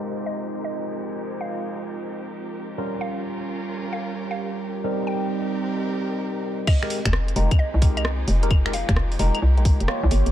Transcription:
Already playing: violin section G#3 C4 D#4 G4 A#4, tine electric piano G#3 D#4 F4 G4 A#4, ambient pad C4 F4 C5 D#5
0.26 synth pluck D#5
0.64 synth pluck D#5
1.41 synth pluck F5
2.78 tine electric piano G3 C#4 F4 A#4, violin section C#4 F4 A#4, ambient pad G4
2.95 ambient pad D6
3.01 synth pluck F5
3.27 ambient pad A#5
3.54 ambient pad G5
3.93 synth pluck F5
4.31 synth pluck F5
4.84 tine electric piano G3 C4 D#4 A#4, ambient pad C4, violin section C4 D#4 G4 A#4
5.07 synth pluck G5
5.27 ambient pad D#5
5.36 ambient pad C5
6.67 violin section G#3 A#3 D#4 G4, ambient pad F4, synth pluck D#5, kick, crash, claves
6.83 tine electric piano G#3 D#4 G4 A#4, finger snap
6.90 open hi-hat
7.05 fm bass F1, finger snap, kick, closed hi-hat
7.13 cross-stick
7.28 closed hi-hat
7.36 fm bass F1, tine electric piano G#3 D#4 G4 A#4, open hi-hat
7.51 kick, closed hi-hat, claves
7.59 synth pluck D#5
7.74 fm bass C2
7.82 tine electric piano G#3 D#4 G4 A#4, kick, open hi-hat
7.97 synth pluck D#5, closed hi-hat, claves
8.05 cross-stick
8.28 fm bass F1, open hi-hat
8.43 tine electric piano G#3 D#4 G4 A#4, closed hi-hat
8.51 kick, claves
8.66 tine electric piano G#3 D#4 G4 A#4, finger snap
8.73 synth pluck F5, open hi-hat
8.89 fm bass F1, finger snap, kick, closed hi-hat
8.96 cross-stick
9.12 open hi-hat
9.19 fm bass F1, tine electric piano G#3 D#4 G4 A#4, open hi-hat
9.35 closed hi-hat, claves
9.42 fm bass C2
9.58 fm bass A#1, tine electric piano G#3 D#4 G4 A#4, closed hi-hat
9.65 kick, open hi-hat
9.80 fm bass F1, closed hi-hat
9.88 tine electric piano A#3 F4 G4 C#5, cross-stick
10.04 fm bass C2
10.11 fm bass G1, violin section C#4 F4, open hi-hat
10.26 fm bass G1, closed hi-hat

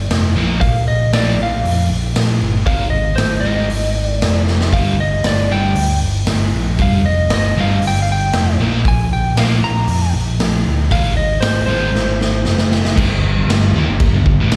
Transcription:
0.10 picked electric bass F1, snare, open hi-hat
0.35 picked electric bass A#1, distorted electric guitar A#2 F3 A#3
0.61 picked electric bass A#1, lead electric guitar F5, kick, open hi-hat
0.88 lead electric guitar D#5
1.13 picked electric bass A#1, distorted electric guitar A#2 F3 A#3, lead electric guitar D5, snare, open hi-hat
1.37 picked electric bass A#1
1.43 lead electric guitar F5
1.63 picked electric bass F2, open hi-hat
1.89 picked electric bass A#1
2.15 picked electric bass A#1, snare, open hi-hat
2.41 picked electric bass G1
2.67 picked electric bass G#1, distorted electric guitar G#2 D#3 G#3, lead electric guitar F5, kick, open hi-hat
2.90 lead electric guitar D#5
3.16 picked electric bass G#1, lead electric guitar C5, snare, open hi-hat
3.40 picked electric bass G#1, lead electric guitar D#5
3.45 distorted electric guitar G#2 D#3 G#3
3.70 picked electric bass G#1, open hi-hat
4.07 lead electric guitar D5
4.22 picked electric bass F1, snare, open hi-hat
4.47 snare
4.61 snare
4.73 picked electric bass G1, distorted electric guitar G2 D3 G3, lead electric guitar F5, kick, open hi-hat
5.00 lead electric guitar D#5
5.24 picked electric bass G1, lead electric guitar D5, snare, open hi-hat
5.51 picked electric bass G1, distorted electric guitar G2 D3 G3, lead electric guitar G5
5.75 picked electric bass D2, open hi-hat
6.02 picked electric bass G1
6.26 picked electric bass G1, snare, open hi-hat
6.52 picked electric bass A#1
6.78 picked electric bass F1, distorted electric guitar G2 D3 G3, lead electric guitar F5, kick, open hi-hat
7.06 lead electric guitar D#5
7.30 picked electric bass G1, snare, open hi-hat
7.34 lead electric guitar D#5
7.56 picked electric bass G1, distorted electric guitar G2 D3 G3
7.61 lead electric guitar F5
7.81 picked electric bass G1, open hi-hat
7.87 lead electric guitar G5
8.02 lead electric guitar F5
8.12 lead electric guitar G5
8.33 picked electric bass F1, snare, open hi-hat
8.58 picked electric bass A#1, distorted electric guitar A#2 F3 A#3
8.85 picked electric bass A#1, lead electric guitar G#5, kick, open hi-hat
9.13 lead electric guitar G5
9.35 picked electric bass A#1, distorted electric guitar A#2 F3 A#3, snare, open hi-hat
9.39 lead electric guitar F5
9.62 picked electric bass A#1, lead electric guitar A#5
9.88 picked electric bass F2, open hi-hat
10.14 picked electric bass A#1
10.39 picked electric bass A#1, snare, open hi-hat
10.66 picked electric bass D2
10.90 picked electric bass G#1, distorted electric guitar G#2 D#3 G#3, lead electric guitar F5, kick, open hi-hat
11.17 lead electric guitar D#5
11.41 picked electric bass G#1, lead electric guitar C5, snare, open hi-hat
11.66 picked electric bass G#1, distorted electric guitar G#2 D#3 G#3, lead electric guitar C5
11.94 picked electric bass G#1, snare
12.21 snare
12.45 picked electric bass F#1, snare
12.58 snare
12.72 snare
12.85 snare
12.96 picked electric bass G1, distorted electric guitar G2 D3, kick, crash
13.10 picked electric bass G1, distorted electric guitar G2 D3
13.36 picked electric bass G1, distorted electric guitar G2 D3
13.47 picked electric bass G1, distorted electric guitar G2 D3, snare, crash
13.73 picked electric bass D#2, distorted electric guitar D#3 A#3
13.87 picked electric bass G1, distorted electric guitar G2 D3
14.00 kick, crash
14.13 picked electric bass G1, distorted electric guitar G2 D3
14.25 picked electric bass G1, distorted electric guitar G2 D3, kick
14.38 picked electric bass A1, distorted electric guitar A2 E3
14.51 picked electric bass G1, distorted electric guitar G2 D3, snare, crash

